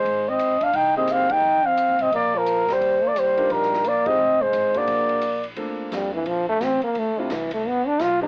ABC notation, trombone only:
X:1
M:4/4
L:1/8
Q:"Swing" 1/4=174
K:Eb
V:1 name="Trombone"
A, C2 D E C C E- | E C2 C B, F,2 G,- | G, B, G,2 G,2 B, C- | C A,2 B,4 z |
[K:Bb] z2 G, =E, F, A, C B, | A, C, =E, A, =B, D F _E |]